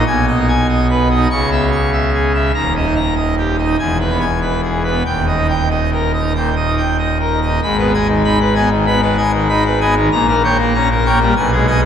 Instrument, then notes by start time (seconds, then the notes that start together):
pipe organ
0.06 B1 B2 G#5
0.28 D#5
0.38 D#4
0.48 G#5
0.69 D#5
0.90 B4
1.11 D#5
1.16 D#4
1.31 C#2 C#3 C#6
1.51 E5
1.72 C#6
1.93 E5
2.14 G#4
2.34 E5
2.54 D#1 D#2 A#5
2.76 D#5
2.86 D#4
2.96 A#5
3.16 D#5
3.38 G4
3.59 D#5
3.64 D#4
3.79 E1 E2 G#5
4.00 B4
4.11 B3
4.21 G#5
4.42 B4
4.63 G#4
4.84 B4
4.89 B3
5.06 D#1 D#2 G5
5.28 D#5
5.38 D#4
5.49 G5
5.71 D#5
5.93 A#4
6.14 D#5
6.20 D#4
6.35 A#2 G5
6.56 D#5
6.67 D#4
6.78 G5
6.99 D#5
7.21 A#4
7.42 D#5
7.47 D#4
7.63 G#1 G#2 B5
7.78 B3 B4
7.94 D#5 G#5
8.08 D#3
8.24 D#4 B5
8.41 B4
8.55 B3 D#5 G#5
8.71 D#3
8.86 B3 B5
9.02 D#3 B4
9.18 D#5 G#5
9.34 D#3
9.49 D#4 B5
9.65 B4
9.81 B3 D#5 G#5
9.96 D#3
10.12 A#1 A#2 A#5
10.28 A#3 A#4
10.44 C#5 G5
10.59 A#3
10.74 C#4 A#5
10.91 A#4
11.06 A#3 C#5 G5
11.21 G3 A#3
11.36 B1 B2 G#5
11.52 G#3 G#4
11.67 D#5 G#5